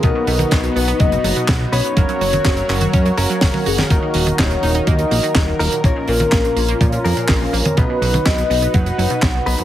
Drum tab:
HH |x-oxxxoxxxoxx-ox|xxoxxxoxxxoxo-ox|x-oxxxoxxxoxx-ox|x-oxxxoxxxoxo-ox|
CP |----x-------x---|----x-x---------|----x-------x---|----x-------x---|
SD |----o-------o---|----o-------o--o|----o-------o---|----o-------o---|
T1 |---o------------|---o---o-----o-o|---o------------|---o-----------o|
BD |o---o---o---o---|o---o---o---o---|o---o---o---o---|o---o---o---o---|

HH |x-oxxxoxxxoxx-ox|
CP |----x-------x---|
SD |----o-------o---|
T1 |---o------------|
BD |o---o---o---o---|